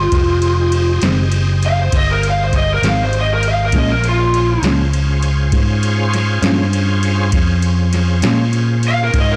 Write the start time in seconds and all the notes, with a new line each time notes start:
Already playing: F4
0.12 F1 G4 G#4 C5 D#5, kick, ride
0.42 ride
0.72 ride
1.02 F#1 F2 D#3 G#3 C4, snare, ride
1.32 ride
1.63 F5, ride
1.82 C5
1.92 G1, kick, ride
1.97 D#5
2.11 A#4
2.23 ride
2.30 F5
2.44 C5
2.53 kick, snare, ride
2.57 D#5
2.74 A#4
2.82 G#1 F2 D#3 G#3 C4, snare, ride
2.88 F5
3.04 C5
3.13 ride
3.21 D#5
3.34 A#4
3.43 ride
3.48 F5
3.65 A#4
3.72 A#1 A#2 F3 G#3 C#4 F4 G#4 C5, kick, ride
3.78 D#5
3.91 A#4
4.04 ride
4.09 F4
4.34 ride
4.62 C#2 A#2 F3 G#3 C#4, snare, ride
4.93 ride
5.22 ride
5.52 G#2, kick, ride
5.83 ride
6.13 snare, ride
6.42 G2 A#2 F3 G#3 C#4, snare, ride
6.73 ride
7.03 ride
7.32 F2 C#4 F4 G#4 C5, kick, ride
7.62 ride
7.93 snare, ride
8.22 A#2 F3 G#3 C#4, snare, ride
8.53 ride
8.83 ride
8.88 F5
9.04 A#4
9.14 G#2, kick, ride
9.20 D#5
9.32 A#4